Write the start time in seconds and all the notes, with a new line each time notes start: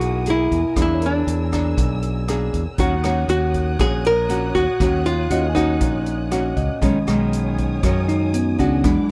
Already playing: B1 B2 A#3 D#4 E4 F#4 G#4 A#4 F#5 G#5 D#6
0.01 closed hi-hat
0.26 A#3 G#4, closed hi-hat
0.30 E4
0.51 E2, kick, closed hi-hat
0.76 E2 E3 A#3 D4 G#4 E6, kick, cross-stick, closed hi-hat
0.82 E4
0.94 C#5
1.02 closed hi-hat
1.06 D4
1.13 D5
1.27 E2, closed hi-hat
1.52 A#3 D4 G#4, kick, cross-stick, closed hi-hat
1.77 B1 B2, kick, closed hi-hat
2.02 closed hi-hat
2.28 A#3 D4 G#4, cross-stick, closed hi-hat
2.53 E2, kick, closed hi-hat
2.78 D#2 D#3 A#3 C#4 F#4 C#5 D#6 F#6, kick, closed hi-hat
3.04 A#3 C#4 F#4 C#5, cross-stick, closed hi-hat
3.28 D#2 F#4, closed hi-hat
3.54 kick, closed hi-hat
3.79 A#1 A#2 A#3 C#4 F#4 G#4, kick, cross-stick, closed hi-hat
4.05 A#4, closed hi-hat
4.29 A#3 C#4 F#4, closed hi-hat
4.55 D#2 F#4, kick, closed hi-hat
4.80 D#2 D#3 A#3 C#4 F#4, kick, cross-stick, closed hi-hat
5.06 F4, closed hi-hat
5.30 D#2 A#3 C#4 F#4 D#5, closed hi-hat
5.50 G#5
5.55 A#3 C#4 D#4 F#4, kick, cross-stick, closed hi-hat
5.81 A#1 A#2, kick, closed hi-hat
6.06 closed hi-hat
6.31 A#3 C#4 F#4, cross-stick, closed hi-hat
6.57 C#2 D#5, kick, closed hi-hat
6.81 B1 B2 D#3 G#3 C#4 C#5 G#5 D#6, kick, closed hi-hat
7.07 B1 D#3 G#3 C#4, cross-stick, closed hi-hat
7.33 closed hi-hat
7.58 kick, closed hi-hat
7.83 F#2 D#3 G#3 C#4 F#4, kick, cross-stick, closed hi-hat
8.08 D#4, closed hi-hat
8.34 B3, closed hi-hat
8.59 C#2 G#3 C#4 D4 F#4, kick, closed hi-hat
8.84 E2 E3 F#3 G#3 D4 G#4 F#5 D6, kick, cross-stick, closed hi-hat